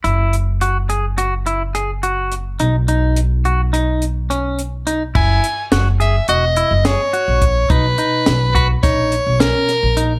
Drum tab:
CC |---------|---------|x--------|---------|
HH |xxxxxxxxx|xxxxxxxxx|-xxxxxxxx|xxxxxxxxx|
SD |---------|---------|--o---o--|--o-o-oo-|
BD |---------|---------|o-------o|o--oo----|